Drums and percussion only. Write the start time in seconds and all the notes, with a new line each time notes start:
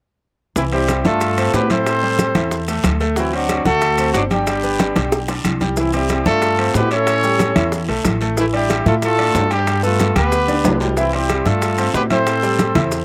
0.56 high bongo, high conga, long guiro, maracas
0.72 high conga, high timbale
0.88 high bongo, high conga, high timbale, short guiro, maracas
1.05 high conga, short guiro, maracas
1.21 high bongo, high conga, high timbale, long guiro, maracas
1.37 high conga, high timbale, maracas
1.54 high bongo, low bongo, high conga, low timbale, short guiro, maracas
1.70 high conga, high timbale, short guiro, maracas
1.86 high bongo, high conga, high timbale, long guiro, maracas
2.03 high bongo, high conga
2.19 high bongo, high conga, high timbale, short guiro, maracas
2.35 high conga, high timbale, short guiro, maracas
2.51 high bongo, high conga, long guiro, maracas
2.68 high bongo, high conga, high timbale, maracas
2.84 high bongo, low bongo, high conga, high timbale, short guiro, maracas
3.00 high bongo, short guiro, maracas
3.16 high bongo, high conga, long guiro, maracas
3.33 high conga, high timbale
3.49 high bongo, high conga, high timbale, short guiro, maracas
3.65 high conga, short guiro, maracas
3.81 high bongo, high conga, high timbale, long guiro, maracas
3.98 high conga, high timbale, maracas
4.14 high bongo, low bongo, high conga, short guiro, maracas
4.30 high conga, high timbale, short guiro, maracas
4.47 high bongo, high conga, high timbale, long guiro, maracas
4.63 high bongo, high conga, maracas
4.79 high bongo, high conga, high timbale, short guiro, maracas
4.96 high bongo, high conga, high timbale, short guiro, maracas
5.12 high bongo, high conga, long guiro, maracas
5.28 low bongo, high conga, high timbale, maracas
5.44 high conga, high timbale, short guiro, maracas
5.61 low bongo, high conga, short guiro, maracas
5.77 high bongo, high conga, long guiro, maracas
5.93 high conga, high timbale, maracas
6.09 high bongo, high conga, high timbale, short guiro, maracas
6.26 high conga, short guiro, maracas
6.42 high bongo, high conga, high timbale, long guiro, maracas
6.59 high conga, high timbale
6.74 high bongo, low bongo, high conga, low timbale, short guiro, maracas
6.91 high timbale, short guiro, maracas
7.07 high bongo, high conga, high timbale, long guiro, maracas
7.23 high bongo, high conga, maracas
7.39 high bongo, high conga, high timbale, short guiro, maracas
7.56 high conga, high timbale, short guiro, maracas
7.72 high bongo, high conga, long guiro, maracas
7.88 high bongo, high conga, high timbale
8.04 high bongo, low bongo, high conga, high timbale, short guiro, maracas
8.21 high bongo, short guiro, maracas
8.37 high bongo, high conga, long guiro, maracas
8.54 high conga, high timbale
8.70 high bongo, high conga, high timbale, short guiro, maracas
8.86 high conga, short guiro, maracas
9.02 high bongo, high conga, high timbale, long guiro, maracas
9.19 high conga, high timbale
9.35 high bongo, low bongo, high conga, low timbale, short guiro, maracas
9.51 high timbale, short guiro, maracas
9.67 high bongo, high conga, high timbale, long guiro, maracas
9.83 high bongo, high conga, maracas
10.00 high bongo, high conga, high timbale, short guiro, maracas
10.16 high conga, high timbale, short guiro, maracas
10.32 high bongo, high conga, long guiro, maracas
10.48 high bongo, high conga, high timbale, maracas
10.64 high bongo, low bongo, high conga, low timbale, short guiro, maracas
10.80 high bongo, low timbale, short guiro, maracas
10.97 high bongo, high conga, long guiro, maracas
11.13 high conga, high timbale
11.29 high bongo, high conga, high timbale, short guiro, maracas
11.46 high conga, short guiro, maracas
11.62 high bongo, high conga, high timbale, long guiro, maracas
11.78 high conga, high timbale, maracas
11.94 high bongo, low bongo, high conga, low timbale, short guiro, maracas
12.10 high conga, high timbale, short guiro, maracas
12.27 high bongo, high conga, high timbale, long guiro, maracas
12.43 high bongo, high conga, maracas
12.59 high bongo, high conga, high timbale, short guiro, maracas
12.75 high conga, low conga, high timbale, short guiro, maracas
12.92 high bongo, high conga, long guiro, maracas